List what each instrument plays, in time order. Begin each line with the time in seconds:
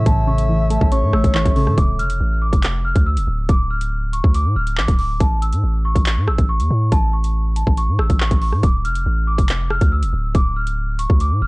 Already playing: synth pluck C#3 E3 A3 C#4, glass harmonica A3 A4 C#5 E5
0.06 808-style bass A1, synth pluck A2, soft synth lead E5, celesta A5, kick, closed hi-hat
0.27 synth pluck C#3, celesta C#6
0.38 closed hi-hat
0.49 synth pluck E3
0.70 synth pluck A3, celesta A5, closed hi-hat
0.81 808-style bass A1, kick
0.92 synth pluck C#4, soft synth lead C#5, celesta C#6, closed hi-hat
1.03 808-style bass A2
1.13 808-style bass A1, synth pluck A3, celesta E6, cross-stick
1.24 808-style bass A1, kick, closed hi-hat
1.35 synth pluck E3, celesta C#6, clap
1.45 808-style bass A1, kick, closed hi-hat
1.56 synth pluck C#3, soft synth lead A4, celesta C#6, open hi-hat
1.67 808-style bass A2, cross-stick
1.77 808-style bass D1, celesta D6, kick, closed hi-hat
1.99 808-style bass F1, celesta F6, closed hi-hat
2.10 closed hi-hat
2.20 808-style bass A1
2.42 celesta D6
2.53 808-style bass F1, kick, closed hi-hat
2.63 clap, closed hi-hat
2.85 celesta F6
2.96 808-style bass D2, kick, closed hi-hat
3.06 celesta E6
3.17 808-style bass E1, closed hi-hat
3.28 808-style bass D1
3.49 808-style bass D1, celesta D6, kick, closed hi-hat
3.71 celesta F6
3.81 closed hi-hat
4.13 celesta C#6, closed hi-hat
4.24 808-style bass D2, kick
4.34 celesta D6, closed hi-hat
4.45 808-style bass A2
4.56 808-style bass D1, celesta F6
4.67 closed hi-hat
4.78 808-style bass A1, celesta D6, clap
4.88 808-style bass D1, kick, closed hi-hat
4.99 celesta D6, open hi-hat
5.20 808-style bass A1, celesta A5, kick, closed hi-hat
5.42 celesta E6, closed hi-hat
5.53 808-style bass A2, closed hi-hat
5.63 808-style bass A1
5.85 celesta C#6
5.95 808-style bass A1, kick, closed hi-hat
6.06 clap, closed hi-hat
6.17 808-style bass A2
6.28 808-style bass A1, celesta E6, cross-stick
6.38 808-style bass A1, kick, closed hi-hat
6.49 celesta C#6
6.60 808-style bass E2, closed hi-hat
6.70 808-style bass A2
6.92 808-style bass A1, celesta A5, kick, closed hi-hat
7.13 celesta C#6
7.24 closed hi-hat
7.56 celesta A5, closed hi-hat
7.67 808-style bass A1, kick
7.77 celesta C#6, closed hi-hat
7.88 808-style bass A2
7.99 808-style bass A1, celesta E6, cross-stick
8.10 808-style bass A1, kick, closed hi-hat
8.20 celesta C#6, clap
8.31 808-style bass A1, kick, closed hi-hat
8.42 celesta C#6, open hi-hat
8.53 808-style bass A2, cross-stick
8.63 808-style bass D1, celesta D6, kick, closed hi-hat
8.85 808-style bass F1, celesta F6, closed hi-hat
8.95 closed hi-hat
9.06 808-style bass A1
9.27 celesta D6
9.38 808-style bass F1, kick, closed hi-hat
9.49 clap, closed hi-hat
9.70 celesta F6, cross-stick
9.81 808-style bass D2, kick, closed hi-hat
9.92 celesta E6
10.03 808-style bass E1, closed hi-hat
10.13 808-style bass D1
10.35 808-style bass D1, celesta D6, kick, closed hi-hat
10.56 celesta F6
10.67 closed hi-hat
10.99 celesta C#6, closed hi-hat
11.10 808-style bass D2, kick
11.20 celesta D6, closed hi-hat
11.31 808-style bass A2
11.42 808-style bass D1, celesta F6